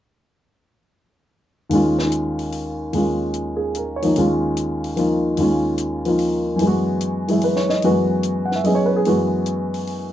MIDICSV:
0, 0, Header, 1, 3, 480
1, 0, Start_track
1, 0, Tempo, 407886
1, 2019, Time_signature, 3, 2, 24, 8
1, 11916, End_track
2, 0, Start_track
2, 0, Title_t, "Grand piano"
2, 0, Program_c, 0, 0
2, 1994, Note_on_c, 0, 39, 45
2, 2013, Note_on_c, 0, 51, 40
2, 2027, Note_on_c, 0, 56, 42
2, 2040, Note_on_c, 0, 61, 40
2, 2059, Note_on_c, 0, 65, 50
2, 3423, Note_off_c, 0, 39, 0
2, 3440, Note_off_c, 0, 51, 0
2, 3441, Note_on_c, 0, 39, 36
2, 3452, Note_off_c, 0, 56, 0
2, 3458, Note_on_c, 0, 51, 36
2, 3468, Note_off_c, 0, 61, 0
2, 3470, Note_on_c, 0, 56, 39
2, 3478, Note_off_c, 0, 65, 0
2, 3489, Note_on_c, 0, 61, 32
2, 3501, Note_on_c, 0, 65, 41
2, 4194, Note_on_c, 0, 68, 37
2, 4437, Note_on_c, 0, 70, 36
2, 4521, Note_off_c, 0, 68, 0
2, 4663, Note_on_c, 0, 73, 38
2, 4714, Note_off_c, 0, 51, 0
2, 4731, Note_on_c, 0, 51, 36
2, 4742, Note_on_c, 0, 53, 36
2, 4753, Note_on_c, 0, 58, 34
2, 4768, Note_on_c, 0, 63, 41
2, 4801, Note_off_c, 0, 70, 0
2, 4885, Note_off_c, 0, 39, 0
2, 4890, Note_off_c, 0, 51, 0
2, 4896, Note_off_c, 0, 56, 0
2, 4898, Note_off_c, 0, 53, 0
2, 4903, Note_off_c, 0, 61, 0
2, 4903, Note_on_c, 0, 39, 41
2, 4904, Note_off_c, 0, 58, 0
2, 4906, Note_off_c, 0, 65, 0
2, 4907, Note_on_c, 0, 51, 43
2, 4911, Note_off_c, 0, 63, 0
2, 4914, Note_on_c, 0, 56, 44
2, 4920, Note_on_c, 0, 61, 39
2, 4924, Note_on_c, 0, 65, 52
2, 4995, Note_off_c, 0, 73, 0
2, 5840, Note_on_c, 0, 53, 36
2, 5855, Note_on_c, 0, 58, 32
2, 5856, Note_off_c, 0, 65, 0
2, 5865, Note_on_c, 0, 63, 33
2, 5874, Note_on_c, 0, 65, 40
2, 6305, Note_off_c, 0, 39, 0
2, 6322, Note_off_c, 0, 51, 0
2, 6323, Note_on_c, 0, 39, 43
2, 6328, Note_off_c, 0, 53, 0
2, 6336, Note_off_c, 0, 58, 0
2, 6340, Note_off_c, 0, 56, 0
2, 6340, Note_on_c, 0, 51, 33
2, 6341, Note_off_c, 0, 63, 0
2, 6345, Note_off_c, 0, 65, 0
2, 6348, Note_off_c, 0, 61, 0
2, 6358, Note_on_c, 0, 56, 34
2, 6368, Note_on_c, 0, 61, 39
2, 6383, Note_on_c, 0, 65, 40
2, 7126, Note_on_c, 0, 53, 34
2, 7133, Note_on_c, 0, 58, 30
2, 7141, Note_off_c, 0, 65, 0
2, 7147, Note_on_c, 0, 63, 33
2, 7159, Note_on_c, 0, 65, 41
2, 7717, Note_on_c, 0, 42, 45
2, 7753, Note_on_c, 0, 52, 41
2, 7769, Note_off_c, 0, 56, 0
2, 7770, Note_off_c, 0, 39, 0
2, 7770, Note_off_c, 0, 53, 0
2, 7774, Note_off_c, 0, 58, 0
2, 7778, Note_off_c, 0, 51, 0
2, 7781, Note_off_c, 0, 63, 0
2, 7787, Note_off_c, 0, 65, 0
2, 7787, Note_on_c, 0, 56, 41
2, 7793, Note_off_c, 0, 61, 0
2, 7817, Note_on_c, 0, 59, 34
2, 7852, Note_on_c, 0, 66, 47
2, 8547, Note_off_c, 0, 52, 0
2, 8565, Note_on_c, 0, 52, 35
2, 8574, Note_off_c, 0, 56, 0
2, 8578, Note_on_c, 0, 54, 33
2, 8584, Note_on_c, 0, 68, 39
2, 8592, Note_on_c, 0, 56, 34
2, 8602, Note_on_c, 0, 64, 41
2, 8754, Note_on_c, 0, 71, 43
2, 8830, Note_off_c, 0, 68, 0
2, 8905, Note_on_c, 0, 73, 43
2, 9046, Note_off_c, 0, 71, 0
2, 9058, Note_on_c, 0, 75, 49
2, 9150, Note_off_c, 0, 73, 0
2, 9188, Note_off_c, 0, 42, 0
2, 9211, Note_off_c, 0, 56, 0
2, 9212, Note_off_c, 0, 52, 0
2, 9218, Note_off_c, 0, 54, 0
2, 9219, Note_off_c, 0, 66, 0
2, 9221, Note_on_c, 0, 42, 46
2, 9222, Note_off_c, 0, 59, 0
2, 9229, Note_on_c, 0, 56, 42
2, 9230, Note_off_c, 0, 64, 0
2, 9230, Note_on_c, 0, 52, 44
2, 9236, Note_on_c, 0, 66, 51
2, 9240, Note_on_c, 0, 59, 42
2, 9307, Note_off_c, 0, 75, 0
2, 9949, Note_on_c, 0, 78, 41
2, 10068, Note_on_c, 0, 76, 41
2, 10093, Note_off_c, 0, 78, 0
2, 10160, Note_off_c, 0, 59, 0
2, 10166, Note_on_c, 0, 54, 36
2, 10178, Note_on_c, 0, 59, 33
2, 10184, Note_on_c, 0, 75, 42
2, 10191, Note_on_c, 0, 61, 32
2, 10197, Note_on_c, 0, 68, 43
2, 10231, Note_off_c, 0, 76, 0
2, 10296, Note_on_c, 0, 73, 48
2, 10407, Note_off_c, 0, 75, 0
2, 10424, Note_on_c, 0, 71, 48
2, 10504, Note_off_c, 0, 73, 0
2, 10529, Note_off_c, 0, 68, 0
2, 10547, Note_on_c, 0, 68, 52
2, 10571, Note_off_c, 0, 71, 0
2, 10647, Note_off_c, 0, 42, 0
2, 10653, Note_off_c, 0, 52, 0
2, 10654, Note_off_c, 0, 54, 0
2, 10657, Note_off_c, 0, 56, 0
2, 10659, Note_off_c, 0, 59, 0
2, 10665, Note_on_c, 0, 42, 43
2, 10666, Note_off_c, 0, 61, 0
2, 10666, Note_off_c, 0, 66, 0
2, 10671, Note_on_c, 0, 52, 39
2, 10674, Note_on_c, 0, 56, 40
2, 10684, Note_on_c, 0, 59, 40
2, 10684, Note_on_c, 0, 66, 48
2, 10711, Note_off_c, 0, 68, 0
2, 11916, Note_off_c, 0, 42, 0
2, 11916, Note_off_c, 0, 52, 0
2, 11916, Note_off_c, 0, 56, 0
2, 11916, Note_off_c, 0, 59, 0
2, 11916, Note_off_c, 0, 66, 0
2, 11916, End_track
3, 0, Start_track
3, 0, Title_t, "Drums"
3, 2008, Note_on_c, 9, 46, 40
3, 2126, Note_off_c, 9, 46, 0
3, 2337, Note_on_c, 9, 38, 43
3, 2454, Note_off_c, 9, 38, 0
3, 2491, Note_on_c, 9, 42, 43
3, 2609, Note_off_c, 9, 42, 0
3, 2810, Note_on_c, 9, 46, 29
3, 2928, Note_off_c, 9, 46, 0
3, 2970, Note_on_c, 9, 46, 33
3, 3087, Note_off_c, 9, 46, 0
3, 3449, Note_on_c, 9, 46, 36
3, 3567, Note_off_c, 9, 46, 0
3, 3927, Note_on_c, 9, 42, 37
3, 4044, Note_off_c, 9, 42, 0
3, 4409, Note_on_c, 9, 42, 37
3, 4526, Note_off_c, 9, 42, 0
3, 4736, Note_on_c, 9, 46, 33
3, 4854, Note_off_c, 9, 46, 0
3, 4893, Note_on_c, 9, 46, 38
3, 5011, Note_off_c, 9, 46, 0
3, 5375, Note_on_c, 9, 42, 39
3, 5492, Note_off_c, 9, 42, 0
3, 5695, Note_on_c, 9, 46, 28
3, 5813, Note_off_c, 9, 46, 0
3, 5848, Note_on_c, 9, 46, 31
3, 5965, Note_off_c, 9, 46, 0
3, 6319, Note_on_c, 9, 46, 41
3, 6437, Note_off_c, 9, 46, 0
3, 6799, Note_on_c, 9, 42, 42
3, 6916, Note_off_c, 9, 42, 0
3, 7121, Note_on_c, 9, 46, 27
3, 7239, Note_off_c, 9, 46, 0
3, 7281, Note_on_c, 9, 46, 34
3, 7398, Note_off_c, 9, 46, 0
3, 7755, Note_on_c, 9, 46, 39
3, 7873, Note_off_c, 9, 46, 0
3, 8245, Note_on_c, 9, 42, 39
3, 8363, Note_off_c, 9, 42, 0
3, 8571, Note_on_c, 9, 46, 31
3, 8689, Note_off_c, 9, 46, 0
3, 8726, Note_on_c, 9, 46, 36
3, 8844, Note_off_c, 9, 46, 0
3, 8894, Note_on_c, 9, 38, 28
3, 9012, Note_off_c, 9, 38, 0
3, 9054, Note_on_c, 9, 38, 33
3, 9172, Note_off_c, 9, 38, 0
3, 9204, Note_on_c, 9, 46, 39
3, 9322, Note_off_c, 9, 46, 0
3, 9686, Note_on_c, 9, 42, 41
3, 9804, Note_off_c, 9, 42, 0
3, 10020, Note_on_c, 9, 38, 24
3, 10138, Note_off_c, 9, 38, 0
3, 10173, Note_on_c, 9, 46, 33
3, 10291, Note_off_c, 9, 46, 0
3, 10652, Note_on_c, 9, 46, 38
3, 10770, Note_off_c, 9, 46, 0
3, 11131, Note_on_c, 9, 42, 41
3, 11248, Note_off_c, 9, 42, 0
3, 11460, Note_on_c, 9, 46, 30
3, 11578, Note_off_c, 9, 46, 0
3, 11618, Note_on_c, 9, 46, 31
3, 11736, Note_off_c, 9, 46, 0
3, 11916, End_track
0, 0, End_of_file